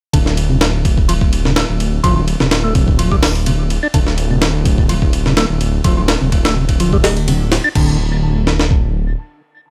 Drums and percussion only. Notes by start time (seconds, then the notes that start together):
0.13 kick, ride
0.26 snare
0.37 ride
0.61 snare, ride
0.85 kick, ride
0.98 kick
1.09 ride
1.21 kick
1.33 ride
1.45 snare
1.56 snare, ride
1.80 ride
2.04 kick, ride
2.28 ride
2.40 snare
2.51 snare, ride
2.75 kick, ride
2.88 kick
2.99 ride
3.12 kick
3.23 snare, open hi-hat
3.35 ride
3.46 ride
3.70 ride
3.94 kick, ride
4.07 snare
4.18 ride
4.42 snare, ride
4.65 kick, ride
4.78 kick
4.89 ride
5.02 kick
5.13 ride
5.26 snare
5.37 snare, ride
5.61 ride
5.84 kick, ride
6.08 snare, ride
6.32 kick, ride
6.45 snare, ride
6.69 kick, ride
6.80 ride
6.93 kick
7.04 snare, open hi-hat
7.17 ride
7.28 ride
7.52 snare, ride
7.75 kick, crash
8.47 snare
8.59 snare
8.71 kick